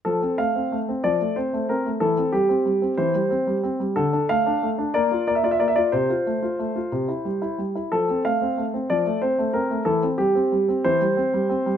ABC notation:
X:1
M:6/8
L:1/16
Q:3/8=61
K:F
V:1 name="Grand piano"
A2 f4 d2 c2 B2 | A2 G4 c6 | A2 f4 d2 d/2 e/2 d/2 e/2 d/2 e/2 d | c8- c2 z2 |
A2 f4 d2 c2 B2 | A2 G4 c6 |]
V:2 name="Grand piano"
F, C A, C A, C F, A, C A, C A, | E, C G, C G, C E, G, C G, C G, | D, D A, D A, D B, F B, F B, F | C, F A, F A, F C, E G, E G, E |
F, C A, C A, C F, A, C A, C A, | E, C G, C G, C E, G, C G, C G, |]